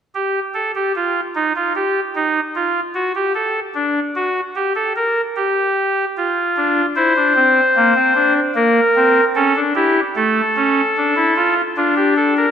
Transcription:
pipe organ
0.15 G4
0.54 A4
0.75 G4
0.95 F4
1.35 D#4
1.56 F4
1.75 G4
2.15 D#4
2.55 F4
2.95 F#4
3.15 G4
3.35 A4
3.75 D4
4.16 F#4
4.56 G4
4.76 A4
4.96 A#4
5.36 G4
6.17 F4
6.57 D4
6.96 E4 C5
7.16 D4
7.36 C4
7.76 A#3
7.95 C4
8.15 D4
8.55 A#3 A#4
8.96 C4
9.35 C#4 A4
9.56 D4
9.75 E4 G4
10.16 A3 A4
10.56 C#4
10.97 D4
11.16 E4
11.36 F4
11.77 D4 F4
11.96 G4
12.17 A4
12.37 A#4

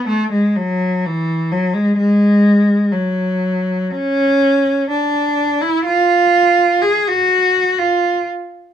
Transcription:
cello
0.08 A3
0.32 G#3
0.56 F#3
1.05 E3
1.51 F#3
1.74 G#3
1.97 G#3
2.92 F#3
3.91 C#4
4.91 D4
5.61 E4
5.85 F4
6.82 G#4
7.08 F#4
7.78 F4

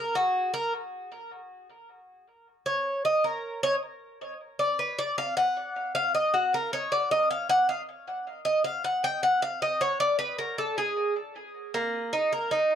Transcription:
cuban tres
Already playing: A#4
0.15 F#4
0.54 A#4
2.66 C#5
3.05 D#5
3.24 A#4
3.63 C#5
4.59 D5
4.79 B4
4.99 D5
5.18 F5
5.37 F#5
5.95 F5
6.15 D#5
6.34 F#4
6.54 A#4
6.73 C#5
6.92 D5
7.11 D#5
7.31 F5
7.49 F#5
7.69 F5
8.45 D#5
8.64 F5
8.84 F#5
9.04 G5
9.23 F#5
9.42 F5
9.62 D#5
9.81 C#5
10.00 D5
10.19 B4
10.39 A#4
10.58 A4
10.78 G#4
11.74 A#3
12.13 D#4
12.33 A#4
12.51 D#4

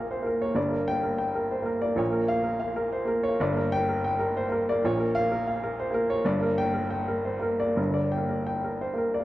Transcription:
upright piano
Already playing: A#1 A#2 A#3 A#4 C#5 F5
0.11 C5
0.22 A#3 A#4
0.42 A#3 C#5
0.55 G1 G2 D5
0.69 A#3
0.73 A#4
0.88 A#3 G5
1.03 A#4
1.18 G5
1.35 A#4
1.51 C5
1.62 A#3 A#4
1.82 A#3 D5
1.96 A#1 A#2 C#5
2.10 A#3 A#4
2.28 A#3 F5
2.43 A#4
2.59 F5
2.76 A#4
2.92 C5
3.05 A#3 A#4
3.23 C#5
3.28 A#3
3.40 G1 G2 D5
3.53 A#3
3.57 A#4
3.72 G5
3.76 A#3
3.89 A#4
4.04 G5
4.19 A#4
4.37 C5
4.48 A#3 A#4
4.69 A#3 D5
4.84 A#1 A#2 C#5
4.97 A#3 A#4
5.15 F5
5.19 A#3
5.32 A#4
5.47 F5
5.63 A#4
5.80 C5
5.91 A#3 A#4
6.10 A#3 C#5
6.25 G1 G2 D5
6.39 A#3 A#4
6.58 A#3 G5
6.74 A#4
6.91 G5
7.08 A#4
7.25 C5
7.39 A#3 A#4
7.60 D5
7.65 A#3
7.76 G1 G2 A#4
7.90 D3 D5
8.12 G5
8.17 A#3
8.29 A#4
8.47 G5
8.64 A#4
8.81 C5
8.94 A#3
8.98 A#4
9.14 D5
9.19 A#3

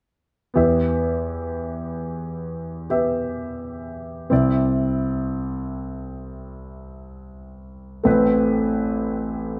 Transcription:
grand piano
0.54 E2 E3 B3 G4 E5
2.89 B3 G4 E5
4.30 C2 C3 C4 E4 D5
8.04 A1 A2 A3 C4 B4

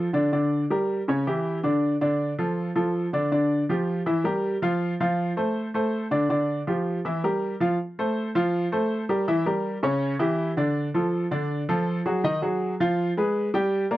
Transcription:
upright piano
0.13 D3 D4 D5
0.32 D3 D4 D5
0.70 G3 G4 A#4
1.08 C#3 C#4 C#5
1.27 E3 E4 G4
1.63 D3 D4 D5
2.01 D3 D4 D5
2.39 F3 F4 A4
2.76 F3 F4 A4
3.13 D3 D4 D5
3.32 D3 D4 D5
3.69 F3 F4 G4
4.06 E3 E4 E5
4.24 G3 G4 A#4
4.62 F3 F4 F5
5.00 F3 F4 F5
5.37 A3 A4 C5
5.74 A3 A4 C5
6.11 D3 D4 D5
6.29 D3 D4 D5
6.67 F3 F4 G4
7.05 E3 E4 E5
7.24 G3 G4 A#4
7.60 F3 F4 F5
7.99 A3 A4 C5
8.35 F3 F4 F5
8.72 A3 A4 C5
9.09 G3 G4 A#4
9.28 E3 E4 E5
9.46 G3 G4 A#4
9.83 C#3 C#4 C#5
10.19 E3 E4 G4
10.57 D3 D4 D5
10.94 F3 F4 A4
11.31 D3 D4 D5
11.69 F3 F4 A4
12.06 F#3 F#4 G#4
12.24 D#3 D#4 D#5
12.42 F#3 F#4 G#4
12.80 F3 F4 F5
13.17 G#3 G#4 B4
13.54 G3 G4 G5
13.91 A#3 A#4 D5

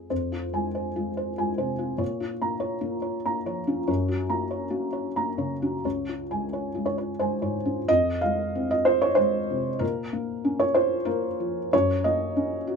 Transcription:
felt piano
Already playing: F2 G#3 C4 F4 G#4
0.10 F2 C5
0.32 F4
0.53 G#3 G#5
0.75 C5
0.96 G#3 F4
1.17 C5
1.38 G#3 G#5
1.58 C3 C5
1.78 C4 F4
1.98 A#2 C#5
2.20 F4
2.42 A#3 A#5
2.60 C#5
2.81 A#3 F4
3.02 C#5
3.26 A#3 A#5
3.46 F3 C#5
3.67 C#4 F4
3.88 F#2 C#5
4.08 F#4
4.29 A#3 A#5
4.51 C#5
4.70 A#3 F#4
4.93 C#5
5.16 A#3 A#5
5.38 C#3 C#5
5.62 C#4 F#4
5.85 C#2 C#5
6.09 F4
6.31 G#3 G#5
6.53 C#5
6.74 G#3 F4
6.86 C#5
6.98 C#5
7.19 G#3 C5 G#5
7.42 G#2 C#5
7.65 C#4 F4
7.88 F2 D#5
8.21 G#3 F5
8.55 C4
8.71 D#5
8.85 F4 C5
9.02 C#5
9.15 G#3 C5
9.50 C3
9.79 A#2 A#4
10.13 A#3
10.45 C#4
10.60 C#5
10.74 F4 C5
11.05 A#3 A#4
11.40 F3
11.73 F#2 C#5
12.04 A#3 D#5
12.36 C#4
12.67 F#4

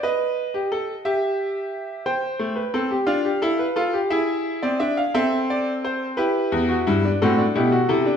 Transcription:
grand piano
0.03 B4 D#5
0.54 G4
0.72 A4
1.05 G4 E5
2.06 C5 G5
2.39 A3
2.56 B4
2.74 C4 A4
2.91 G4
3.07 D4 F4 F5
3.25 G4
3.42 E4 A4
3.59 B4
3.76 F4 A4
3.93 G4
4.10 E4 G#4 E5
4.63 C4 D5
4.80 D4 E5
4.97 F5
5.14 C4 A4 E5
5.50 D5
5.85 C5
6.17 E4 G4 B4
6.52 E2
6.69 F#4
6.87 G2 E4
7.05 D4
7.22 A2 C4 F#4 A4
7.38 D4
7.55 B2 E4 G4
7.72 F#4
7.89 C3 E4 A4
8.06 D4

